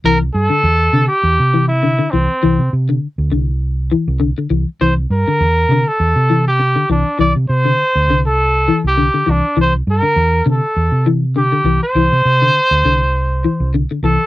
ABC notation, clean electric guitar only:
X:1
M:4/4
L:1/16
Q:"Swing 16ths" 1/4=101
K:Cmix
V:1 name="Clean electric guitar" clef=bass
E,2 z D,2 z D,2 z2 E,2 D, D, E,2 | E,2 z D,2 z D,2 z2 E,2 D, D, E,2 | E,2 z D,2 z D,2 z2 E,2 z D, E,2 | E,2 z D,2 z D,2 z2 E,2 D, D, E,2 |
E,2 z D,2 z D,2 z2 E,2 D, D, E,2 | E,2 z D,2 z D,2 z2 E,2 D, D, E,2 |]